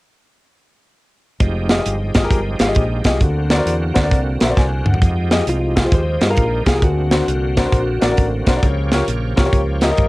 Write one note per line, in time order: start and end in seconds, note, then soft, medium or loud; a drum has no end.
1.40 1.79 F1 medium
1.40 3.19 F3 medium
1.40 3.20 G#3 medium
1.40 3.19 D#4 medium
1.40 3.19 G4 medium
1.40 kick loud
1.40 closed hi-hat medium
1.69 1.76 F4 medium
1.69 1.76 G4 medium
1.69 1.76 G#4 medium
1.69 1.76 D#5 medium
1.69 snare loud
1.69 closed hi-hat soft
1.77 1.92 F4 medium
1.77 1.93 G4 medium
1.77 1.93 G#4 medium
1.77 1.93 D#5 medium
1.86 2.11 G1 medium
1.86 closed hi-hat medium
2.14 2.29 G#1 medium
2.14 2.21 F4 medium
2.14 2.21 G4 medium
2.14 2.21 G#4 medium
2.14 2.22 D#5 medium
2.14 kick medium
2.14 snare loud
2.14 closed hi-hat medium
2.22 2.37 F4 medium
2.22 2.38 G4 medium
2.22 2.38 G#4 medium
2.22 2.38 A#4 medium
2.31 2.56 G1 medium
2.31 kick loud
2.31 closed hi-hat medium
2.59 2.73 G#1 medium
2.59 2.65 F4 medium
2.59 2.66 G4 medium
2.59 2.66 G#4 medium
2.59 2.66 F5 medium
2.59 snare medium
2.59 closed hi-hat medium
2.67 2.82 F4 medium
2.67 2.82 G4 medium
2.67 2.83 G#4 medium
2.67 2.83 D#5 medium
2.75 3.01 A#1 medium
2.75 kick medium
2.75 closed hi-hat medium
3.04 3.19 C2 medium
3.04 3.17 F4 medium
3.04 3.17 G4 medium
3.04 3.17 G#4 medium
3.04 3.18 D#5 medium
3.04 kick medium
3.04 snare loud
3.04 closed hi-hat medium
3.21 3.60 D2 medium
3.21 3.92 D3 medium
3.21 5.00 D3 medium
3.21 5.00 A#3 medium
3.21 5.00 C4 medium
3.21 5.00 F#4 medium
3.21 kick loud
3.21 closed hi-hat medium
3.50 3.56 F#4 medium
3.50 3.56 A#4 medium
3.50 3.56 C5 medium
3.50 3.57 D5 medium
3.50 snare loud
3.50 closed hi-hat medium
3.57 3.72 F#4 medium
3.57 3.72 A#4 medium
3.57 3.73 C5 medium
3.57 3.73 D5 medium
3.66 3.91 E2 medium
3.66 closed hi-hat medium
3.94 4.10 D2 medium
3.94 4.01 F#4 medium
3.94 4.01 A#4 medium
3.94 4.01 C5 medium
3.94 4.01 D5 medium
3.94 kick medium
3.94 snare loud
3.94 closed hi-hat medium
4.02 4.17 F#4 medium
4.02 4.17 A#4 medium
4.02 4.18 C5 medium
4.02 4.18 D5 medium
4.11 4.37 C2 medium
4.11 kick loud
4.11 closed hi-hat medium
4.40 4.55 A#1 medium
4.40 4.46 F#4 medium
4.40 4.47 A#4 medium
4.40 4.47 C5 medium
4.40 4.47 E5 medium
4.40 snare medium
4.40 closed hi-hat medium
4.48 4.63 F#4 medium
4.48 4.63 A#4 medium
4.48 4.63 C5 medium
4.48 4.64 D5 medium
4.57 4.82 C2 medium
4.57 4.85 G#5 medium
4.57 kick medium
4.57 snare soft
4.85 4.99 D2 medium
4.85 5.29 F#5 medium
4.85 mid tom medium
4.94 floor tom medium
5.01 5.40 F2 medium
5.01 6.80 F3 medium
5.01 6.80 G#3 medium
5.01 6.80 D#4 medium
5.01 6.81 G4 medium
5.01 kick loud
5.01 closed hi-hat medium
5.31 5.43 F4 medium
5.31 5.43 G4 medium
5.31 5.43 G#4 medium
5.31 5.43 D#5 medium
5.31 snare loud
5.31 closed hi-hat medium
5.47 5.85 C2 medium
5.47 5.90 F4 medium
5.47 closed hi-hat medium
5.75 5.82 F4 medium
5.75 5.82 G4 medium
5.75 5.82 G#4 medium
5.75 5.82 F5 medium
5.75 kick medium
5.75 snare loud
5.75 closed hi-hat medium
5.84 5.98 F4 medium
5.84 5.99 G4 medium
5.84 5.99 G#4 medium
5.84 5.99 C5 medium
5.92 6.17 D#2 medium
5.92 6.30 C5 medium
5.92 kick loud
5.92 closed hi-hat medium
6.21 6.35 G2 medium
6.21 6.27 F4 medium
6.21 6.27 G4 medium
6.21 6.27 G#4 medium
6.21 6.28 D#5 medium
6.21 snare medium
6.21 closed hi-hat medium
6.29 6.43 F4 medium
6.29 6.43 G4 medium
6.29 6.44 G#4 medium
6.29 6.66 A#4 medium
6.29 6.44 F5 medium
6.37 6.62 A#1 medium
6.37 kick medium
6.37 closed hi-hat medium
6.66 6.80 C2 medium
6.66 6.72 F4 medium
6.66 6.72 G4 medium
6.66 6.83 G#4 medium
6.66 6.72 G#4 medium
6.66 6.73 F5 medium
6.66 kick medium
6.66 snare loud
6.66 closed hi-hat medium
6.74 6.82 F4 medium
6.74 6.82 G4 medium
6.74 6.82 G#4 medium
6.74 6.83 A#4 medium
6.82 7.21 D2 medium
6.82 7.53 D3 medium
6.82 8.61 D3 medium
6.82 10.08 A#3 medium
6.82 8.61 C4 medium
6.82 8.13 F#4 medium
6.82 8.61 F#4 medium
6.82 kick loud
6.82 closed hi-hat medium
7.11 7.23 D4 medium
7.11 7.23 F#4 medium
7.11 7.23 A#4 medium
7.11 7.24 C5 medium
7.11 snare loud
7.11 closed hi-hat medium
7.27 7.66 C2 medium
7.27 closed hi-hat medium
7.57 7.62 D4 medium
7.57 7.63 F#4 medium
7.57 7.63 A#4 medium
7.57 7.63 C5 medium
7.57 kick medium
7.57 snare loud
7.57 closed hi-hat medium
7.65 7.79 D4 medium
7.65 7.79 F#4 medium
7.65 7.79 A#4 medium
7.65 7.80 C5 medium
7.72 7.97 A#1 medium
7.72 kick loud
7.72 closed hi-hat medium
8.01 8.15 A1 medium
8.01 8.07 D4 medium
8.01 8.07 F#4 medium
8.01 8.07 A#4 medium
8.01 8.08 D5 medium
8.01 snare medium
8.01 closed hi-hat medium
8.10 8.24 D4 medium
8.10 8.24 F#4 medium
8.10 8.25 A#4 medium
8.10 8.25 D5 medium
8.17 8.43 A1 medium
8.17 kick medium
8.17 closed hi-hat medium
8.46 8.60 B1 medium
8.46 8.53 D4 medium
8.46 8.53 F#4 medium
8.46 8.53 A#4 medium
8.46 8.53 C5 medium
8.46 kick medium
8.46 snare loud
8.46 closed hi-hat medium
8.55 8.63 D4 medium
8.55 8.63 F#4 medium
8.55 8.64 A#4 medium
8.55 8.64 D5 medium
8.62 9.01 C#2 medium
8.62 9.33 C#3 medium
8.62 10.08 F3 medium
8.62 10.08 G4 medium
8.62 10.08 C#5 medium
8.62 kick loud
8.62 closed hi-hat medium
8.92 9.03 F4 medium
8.92 9.03 G4 medium
8.92 9.04 A#4 medium
8.92 9.04 C#5 medium
8.92 snare loud
8.92 closed hi-hat medium
9.08 9.33 A#1 medium
9.08 closed hi-hat medium
9.36 9.51 C2 medium
9.36 9.42 F4 medium
9.36 9.43 G4 medium
9.36 9.43 A#4 medium
9.36 9.43 C#5 medium
9.36 kick medium
9.36 snare loud
9.36 closed hi-hat medium
9.45 9.59 F4 medium
9.45 9.59 G4 medium
9.45 9.60 A#4 medium
9.45 9.60 C#5 medium
9.53 9.91 C#2 medium
9.53 kick loud
9.53 closed hi-hat medium
9.81 9.88 F4 medium
9.81 9.88 G4 medium
9.81 9.88 A#4 medium
9.81 9.88 D#5 medium
9.81 snare medium
9.81 closed hi-hat medium
9.90 10.04 F4 medium
9.90 10.04 G4 medium
9.90 10.05 A#4 medium
9.90 10.05 D#5 medium
9.97 10.08 G#1 medium
9.97 kick medium
9.97 closed hi-hat medium